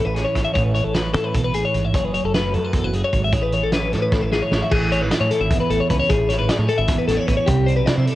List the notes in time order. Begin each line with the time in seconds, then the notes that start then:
Already playing: A2 E3 C#4 E4 G#4
0.05 A1 B4
0.15 C#4 G#4, snare, closed hi-hat
0.25 C#5
0.35 A1 A4, kick, snare, closed hi-hat
0.45 E5
0.53 A1 A2 G#4 C#5, kick, closed hi-hat
0.64 B4
0.74 E3 C#5, closed hi-hat
0.84 A1 A4
0.93 C#4 B4, snare, closed hi-hat
1.14 A2 E3 A4, snare, closed hi-hat
1.24 B4
1.34 B2 A4, kick, closed hi-hat
1.44 A1 B4
1.53 A2 G#4, closed hi-hat
1.65 C#5
1.74 A1 G#2, closed hi-hat
1.85 E5
1.94 F#1 F#2 G#4 C#5, kick, closed hi-hat
2.05 B4
2.13 F#3 C#5, closed hi-hat
2.24 F#1 A4
2.34 A3 B4, snare, closed hi-hat
2.53 F#2 F#3 A4, closed hi-hat
2.65 B4
2.73 E2 A4, kick, closed hi-hat
2.84 F#1 B4
2.93 F#2 G#4, closed hi-hat
3.04 C#5
3.13 G#1 G#2, kick, closed hi-hat
3.24 E5
3.32 A1 A2 G#4 C#5, kick, closed hi-hat
3.43 B4
3.52 E3 C#5, closed hi-hat
3.63 A1 A4
3.72 C#4 B4, snare, closed hi-hat
3.92 A2 E3 A4, snare, closed hi-hat
4.02 B4
4.12 E4 A4, kick, snare
4.22 A1 B4
4.32 C#4 G#4, snare
4.42 C#5
4.51 A1 F#4, snare
4.62 E5
4.71 A1 A2 G#4, kick, crash
4.92 C#4 C#5, closed hi-hat
5.01 G#1 E4 B4
5.11 G#4 D5, snare, closed hi-hat
5.20 A2 C#5
5.31 E4 A4, closed hi-hat
5.41 G#1 E5
5.51 E2, kick, closed hi-hat
5.60 B4
5.70 A1 E4 A4, closed hi-hat
5.80 C#5
5.90 C#2 C#4 B4, kick, closed hi-hat
5.99 C#5
6.09 A1 A2 G#4, kick, closed hi-hat
6.29 E4 C#5, snare, closed hi-hat
6.39 G#1 B4
6.49 G#4 D5, snare, closed hi-hat
6.59 A2 C#5
6.69 E4 A4, closed hi-hat
6.78 G#1 E5
6.88 E2, kick, snare, closed hi-hat
6.98 B4
7.08 A1 C#4 A4, snare, closed hi-hat
7.17 E4 C#5
7.27 A1 C#4 B4, kick, closed hi-hat
7.37 C#5
7.46 C2 C3 G4, kick, closed hi-hat
7.66 D4 C5, closed hi-hat
7.76 B1 B4
7.86 E4 D5, snare, closed hi-hat
7.96 C3 C5
8.06 D4 A4, closed hi-hat